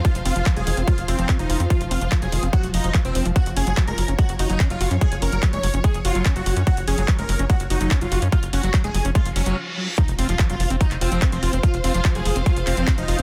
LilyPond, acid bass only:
\new Staff \with { instrumentName = "Acid bass" } { \clef bass \time 4/4 \key f \phrygian \tempo 4 = 145 f16 r16 c'16 f16 f16 ges16 ees16 c'16 ges16 r16 f'16 f16 c'16 f16 f'16 c'16 | f16 r16 c'16 f16 f16 ges16 ees16 c'16 ges8 f16 f16 f16 c'16 c'16 f16 | ges16 r16 des'16 ges16 ges16 aes16 ges16 des'16 aes16 r16 ges'16 ges16 des'16 ges16 ges'16 des'16 | ges16 r16 des'16 ges16 ges16 aes16 ges16 des'16 aes16 r16 ges'16 ges16 des'16 ges16 ges'16 des'16 |
ges16 r16 des'16 ges16 ges16 aes16 ges16 des'16 aes16 r16 ges'16 ges16 des'16 ges16 ges'16 des'16 | ges16 r16 des'16 ges16 ges16 aes16 ges16 des'16 aes16 r16 ges16 ges16 r4 | f16 r16 c'16 f16 f16 ges16 f16 c'16 ges16 r16 f'16 f16 c'16 f16 f'16 c'16 | f16 r16 c'16 f16 f16 ges16 f16 c'16 ges16 r16 f'16 f16 c'16 f16 f'16 c'16 | }